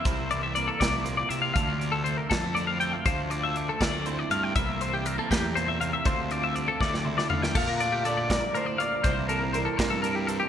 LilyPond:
<<
  \new Staff \with { instrumentName = "Clean electric guitar" } { \time 6/8 \key d \minor \tempo 4. = 80 c''8 d''16 e''16 d''16 a'16 d''8 c''16 d''16 e''16 f''16 | f''8 d''16 a'16 c''16 bes'16 a'8 d''16 f''16 g''16 f''16 | c''8 d''16 e''16 d''16 a'16 d''8 c''16 d''16 f''16 g''16 | e''8 c''16 g'16 bes'16 a'16 g'8 c''16 e''16 f''16 e''16 |
c''8 d''16 e''16 d''16 a'16 d''8 c''16 d''16 f''16 g''16 | a'16 bes'16 d''16 g'16 a'16 d''16 bes'8 bes'16 d''16 f''8 | c''8 bes'8 c''16 a'16 c''16 a'16 bes'16 g'16 a'16 g'16 | }
  \new Staff \with { instrumentName = "Clean electric guitar" } { \time 6/8 \key d \minor r2. | r2. | r2. | r2. |
r2. | f''4 d''8 d''8 c''8 d''8 | c''8 a'8 bes'8 bes'4 r8 | }
  \new Staff \with { instrumentName = "Clean electric guitar" } { \time 6/8 \key d \minor << { e'4 bes2 | d'16 f'8. a8 a16 c'16 d'16 e'16 a8 | f'4 a8 a16 c'16 e'8 a8 | <e bes c' e'>4 g16 bes4.~ bes16 |
<d a c' f'>4 g16 a16 a16 c'16 e'8 a8 | r8 a2~ a8 | <e bes c' e'>8 bes4. d'16 e'16 c'8 | } \\ { c8 e4 a,8 bes,8 c8 | d,8 d2~ d8 | d,8 d2~ d8 | c8 e4 a,8 bes,8 c8 |
d,8 d2~ d8 | bes,4 d8 g,8 a,8 bes,8 | c4 e8 c4. | } >> }
  \new Staff \with { instrumentName = "Fingered electric bass" } { \clef bass \time 6/8 \key d \minor c,4. c,4 c8 | d,4. f,4. | d,4. d,4 g,8 | c,4. e,4. |
d,4. d,4 d8 | bes,2 r4 | c,4. g,4. | }
  \new DrumStaff \with { instrumentName = "Drums" } \drummode { \time 6/8 <hh bd>8 hh8 hh8 <hh bd sn>8 hh8 hh8 | <hh bd>8 hh8 hh8 <hh bd sn>8 hh8 hh8 | <hh bd>8 hh8 hh8 <hh bd sn>8 hh8 hh8 | <hh bd>8 hh8 hh8 <hh bd sn>8 hh8 hh8 |
<hh bd>8 hh8 hh8 <bd sn>16 sn16 toml16 sn16 tomfh16 sn16 | <cymc bd>8 hh8 hh8 <hh bd sn>8 hh8 hh8 | <hh bd>8 hh8 hh8 <hh bd sn>8 hh8 hh8 | }
>>